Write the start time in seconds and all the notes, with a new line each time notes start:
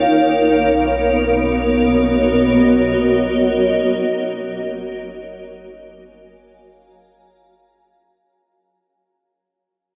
Already playing: D#4 A#4 C#5 F5 G5
0.10 B1 B3
0.80 F#4
1.04 D#5
4.16 F#1
5.54 G#5
5.84 F5
6.00 A#5